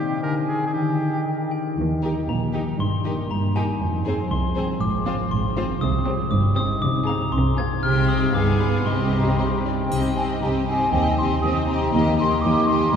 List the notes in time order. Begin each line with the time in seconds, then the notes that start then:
Already playing: C3 D#4 G4 G5
0.22 D3 D4 A#4 G#5
0.48 F4 G#4
0.67 G#4
0.74 D#3 D#4 G4 G5
1.01 D#4
1.27 A#4
1.51 G4 G5
1.78 D#2 D#3
2.03 D#4 G4 A#4
2.29 A#1 A#2 A#4 A#5
2.54 D#4 G4 A#4
2.80 G1 G2 C6
3.05 A#3 D#4 G4 A#4
3.31 G1 G2 G4 A#5
3.56 D#4 G4 A#4 G#5
3.81 F1 F2
4.06 C4 G#4 C5
4.31 C2 G#4 C6
4.56 C4 F4 G#4 C5
4.81 G#1 G#2 D6
5.05 C4 F4 C5
5.31 G#1 G#2 G#4 C6
5.56 C4 F4 C5
5.81 C2 C3 D#6
6.06 C4 G4 C5
6.31 G1 G2 G4 D6
6.56 C4 D#4 G4 C5 D#6
6.82 C2 C3 D6
7.07 C4 G#4 F5 A#5
7.32 C2 C3 G#4 C6
7.58 C4 F4 G#4 F5 G#6
7.83 C2 C3 C4 G4 G5 F6
8.09 D#4 G4 D#6
8.34 G1 G2 B3 G#4 F5 D6
8.60 F4 G#4 B5
8.86 C2 C3 C4 G4 D#5 C6
9.13 C4 A#5
9.39 G4 D#5 C6
9.65 D#4 D5 G5
9.91 C2 C3 C4 G4 D#5, triangle
10.16 C4 G4 D#5 G#5
10.42 C2 C3 C4 G4 D#5 A#5
10.67 C4 D#4 G4 D#5 G#5
10.93 D#2 D#3 C4 G4 D#5 G5
11.18 C4 D#4 G4 D#5 C6
11.42 D#2 C4 G4 C5 D#5 D#6
11.67 C4 G4 D#5 A#5
11.93 D#2 D#3 A#3 G4 D#5
12.18 A#3 D#4 G4 D#5 C6
12.42 D#2 A#3 G4 A#4 D#5 D6
12.67 A#3 G4 D#5 C6
12.93 D#5 A#5